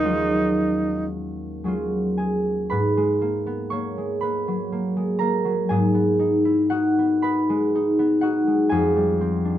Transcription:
Already playing: harp D#2 F3 D#4, alto saxophone D#4
0.03 harp F#3 G#3 C#4 F4
1.64 harp F#3 G#3 C#4 F4
2.18 harp G#4 G#5
2.70 harp G#2 B4 B5
2.97 harp G#3
3.21 harp A#3
3.47 harp B3
3.70 harp A#3 C#5 C#6
3.98 harp G#3
4.21 harp A#3 B4 B5
4.48 harp F#3
4.72 harp A#3
4.97 harp G#3
5.19 harp A#3 A#4 A#5
5.45 harp F#3
5.69 harp G#2 G#4 G#5
5.94 harp B3
6.19 harp D#4
6.45 harp E4
6.70 harp D#4 F#4 F#5
6.99 harp B3
7.22 harp D#4 B4 B5
7.50 harp G#3
7.75 harp D#4
7.99 harp B3
8.21 harp D#4 F#4 F#5
8.47 harp G#3
8.69 harp F2 G#4 G#5
8.96 harp G3
9.21 harp C4
9.45 harp D4

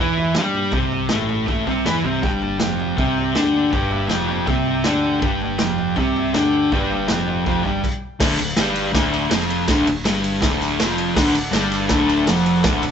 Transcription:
0.00 picked electric bass E2, distorted electric guitar E3 E4
0.17 floor tom
0.35 picked electric bass G2, distorted electric guitar G3 G4, snare, floor tom
0.54 floor tom
0.72 picked electric bass C2, distorted electric guitar C3 C4, kick, floor tom
0.92 floor tom
1.09 picked electric bass A1, distorted electric guitar A2 A3, snare, floor tom
1.29 floor tom
1.47 picked electric bass A1, distorted electric guitar A2 A3, kick, floor tom
1.66 picked electric bass C2, distorted electric guitar C3 C4, kick, floor tom
1.85 picked electric bass E2, distorted electric guitar E3 E4, snare, floor tom
2.04 picked electric bass C2, distorted electric guitar C3 C4, floor tom
2.22 picked electric bass G1, distorted electric guitar G2 G3, transistor combo organ G4 D5 G5, kick, floor tom
2.41 transistor combo organ G4 D5 A5, floor tom
2.60 picked electric bass F1, distorted electric guitar F2 F3, transistor combo organ G4 D5, snare, floor tom
2.64 transistor combo organ G5
2.80 floor tom
2.98 picked electric bass C2, distorted electric guitar C3 C4, transistor combo organ G4 D5 G5, kick, floor tom
3.18 floor tom
3.35 picked electric bass D2, distorted electric guitar D3 D4, transistor combo organ G4 D5 G5, snare, floor tom
3.54 floor tom
3.71 picked electric bass G1, distorted electric guitar G2 G3, transistor combo organ G4 D5, kick, floor tom
3.75 transistor combo organ G5
3.90 transistor combo organ G4 D5 E5, floor tom
4.09 picked electric bass F1, distorted electric guitar F2 F3, transistor combo organ G4 D5, snare, floor tom
4.13 transistor combo organ G5
4.28 floor tom
4.44 picked electric bass C2, distorted electric guitar C3, transistor combo organ G4 D5 G5, kick, floor tom
4.48 distorted electric guitar C4
4.66 floor tom
4.84 picked electric bass D2, distorted electric guitar D3 D4, transistor combo organ G4 D5 G5, snare, floor tom
5.04 floor tom
5.20 picked electric bass G1, distorted electric guitar G2 G3, transistor combo organ G4 D5 G5, kick, floor tom
5.41 transistor combo organ G4 D5 G5, floor tom
5.59 picked electric bass F1, distorted electric guitar F2 F3, transistor combo organ G4 D5 G5, snare, floor tom
5.78 floor tom
5.96 picked electric bass C2, distorted electric guitar C3 C4, transistor combo organ G4 D5 E5, kick, floor tom
6.16 floor tom
6.33 picked electric bass D2, distorted electric guitar D3 D4, transistor combo organ G4 D5 G5, snare, floor tom
6.54 floor tom
6.72 picked electric bass G1, distorted electric guitar G2 G3, transistor combo organ G4 D5 G5, kick, floor tom
6.91 transistor combo organ G4 D5 G5, floor tom
7.08 picked electric bass F1, distorted electric guitar F2 F3, transistor combo organ G4 D5 G5, snare, floor tom
7.27 floor tom
7.45 picked electric bass F1, distorted electric guitar F2 F3, transistor combo organ G4 D5 G5, kick, floor tom
7.64 picked electric bass G1, distorted electric guitar G2 G3, kick, floor tom
7.84 kick, crash
8.20 picked electric bass D1, distorted electric guitar D2 D3, kick, snare, crash
8.37 picked electric bass D1, distorted electric guitar D2, ride, tambourine
8.56 picked electric bass G1, distorted electric guitar G2 G3, snare, ride, tambourine
8.76 ride, tambourine
8.92 picked electric bass D1, distorted electric guitar D2 D3, kick, snare, ride
9.13 ride, tambourine
9.30 picked electric bass F1, distorted electric guitar F2 F3, snare, ride, tambourine
9.41 tambourine
9.50 ride
9.68 picked electric bass D1, distorted electric guitar D2 D3, kick, snare, ride
9.87 picked electric bass D1, distorted electric guitar D2, ride
10.05 picked electric bass G1, distorted electric guitar G2 G3, snare, ride, tambourine
10.15 tambourine
10.24 ride, tambourine
10.41 picked electric bass D1, distorted electric guitar D2 D3, kick, snare, ride, tambourine
10.61 ride, tambourine
10.80 picked electric bass F1, distorted electric guitar F2 F3, snare, ride, tambourine
10.90 tambourine
10.98 ride, tambourine
11.16 picked electric bass D1, distorted electric guitar D2 D3, transistor combo organ A4 D5 F#5, kick, snare, crash
11.34 picked electric bass D1, distorted electric guitar D2, ride, tambourine
11.49 picked electric bass G1, distorted electric guitar G2 G3, transistor combo organ A4 D5 A5, snare, ride
11.54 tambourine
11.72 ride, tambourine
11.88 picked electric bass D1, distorted electric guitar D2 D3, transistor combo organ A4 D5 A5, kick, snare, ride
12.09 ride, tambourine
12.26 picked electric bass F1, distorted electric guitar F2 F3, transistor combo organ A4 D5, snare, ride, tambourine
12.30 transistor combo organ F#5
12.37 tambourine
12.46 ride
12.60 transistor combo organ A4 D5 F#5, snare, ride
12.65 picked electric bass D1, distorted electric guitar D2 D3, kick
12.74 tambourine
12.82 picked electric bass D1, distorted electric guitar D2, ride, tambourine

